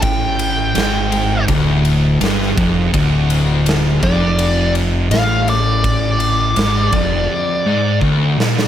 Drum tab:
RD |x-x-x-x-x-x-x-x-|x-x-x-x-x-x-x-x-|x-x-x-x---------|
SD |----o-------oo--|----o-------o---|----o---------oo|
BD |o-------o-----o-|o-----o---------|o-----o-----o---|